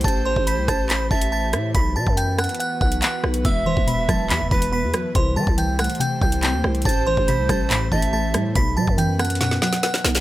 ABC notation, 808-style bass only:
X:1
M:4/4
L:1/16
Q:1/4=141
K:Ador
V:1 name="808-style bass" clef=bass
A,,,3 A,,,2 C,, A,,,4 A,,,4 A,,2 | B,,,2 B,, F,,4 z3 B,,,2 z2 B,,,2 | E,,,3 E,,,3 E,,,2 E,, E,,, E,,,3 E,, z2 | C,,2 E, C,,4 z3 C,,3 ^D,, C,,2 |
A,,,3 A,,,2 C,, A,,,4 A,,,4 A,,2 | B,,,2 B,, F,,6- F,, z4 B,,,2 |]